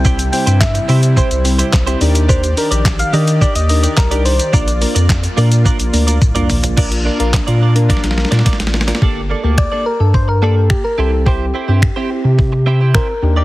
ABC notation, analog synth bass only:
X:1
M:4/4
L:1/16
Q:1/4=107
K:Bb
V:1 name="Analog synth bass" clef=bass
C,,3 G,,3 C,3 C,,3 C,,2 E,,2- | E,,3 B,,,3 E,3 E,,3 C,,4 | B,,,3 F,,3 B,,3 B,,, D,,2 C,,2 B,,,2 | B,,,3 B,,,2 B,,4 B,,,2 B,, z A,,,3 |
G,,,3 D,,2 z2 G,,6- G,, C,,2- | C,,3 G,,2 z2 C,6- C, E,,2 |]